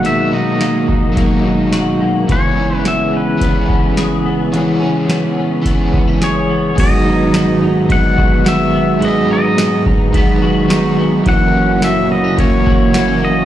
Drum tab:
CC |--------|--------|--------|x-------|
RD |--------|--------|--------|x-x-x-x-|
HH |x-x-x-x-|x-x-x-x-|x-x-x-x-|--------|
TB |--------|--------|--------|--x---x-|
SD |--o---o-|--o---o-|--o---o-|--o---o-|
BD |---oo---|o---oo--|----oo--|o---oo--|

CC |--------|--------|
RD |x-x-x-x-|x-x-x-x-|
HH |--------|--------|
TB |--x---x-|--x---x-|
SD |--o---o-|--o---o-|
BD |---oo---|o---oo--|